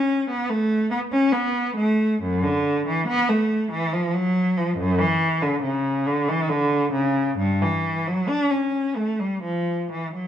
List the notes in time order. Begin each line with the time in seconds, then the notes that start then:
Already playing: C#4
0.30 B3
0.50 A3
0.91 B3
1.12 C#4
1.33 B3
1.76 A3
2.22 F#2
2.43 D3
2.87 E3
3.08 B3
3.28 A3
3.72 E3
3.93 F3
4.14 F#3
4.57 F3
4.78 F#2
4.99 E3
5.42 D3
5.63 C#3
6.06 D3
6.28 E3
6.49 D3
6.93 C#3
7.39 G2
7.62 E3
8.08 F#3
8.29 D4
8.51 C#4
8.96 A3
9.20 G3
9.43 F3
9.92 E3
10.15 F#3